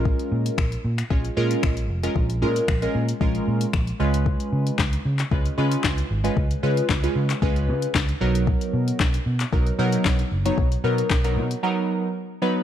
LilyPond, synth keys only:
\new Staff \with { instrumentName = "Synth keys" } { \time 4/4 \key ces \lydian \tempo 4 = 114 <aes des' f' bes'>4 r4 <aes des' f' des''>16 r16 <aes des' f' bes'>8. r8 <aes des' f' bes'>16~ | <aes des' f' bes'>16 r16 <aes des' f' bes'>8 r16 <aes des' f' bes'>8 r16 <aes des' f' bes'>8. r8. <aes des' f' ces''>8~ | <aes des' f' ces''>4 r4 <aes des' f' ces''>16 r16 <aes des' f' ces''>8. r8 <aes des' f' ces''>16~ | <aes des' f' ces''>16 r16 <aes des' f' ces''>8 r16 <aes des' f' ces''>8 r16 <aes des' f' ces''>8. r8. <fis b dis' ais'>8~ |
<fis b dis' ais'>4 r4 <fis b dis' ais'>16 r16 <fis b dis' ais'>8. r8 <fis b dis' des''>16~ | <fis b dis' des''>16 r16 <fis b dis' ais'>8 r16 <fis b dis' ais'>8 r16 <fis b dis' ais'>8. r8. <fis b dis' b'>8 | }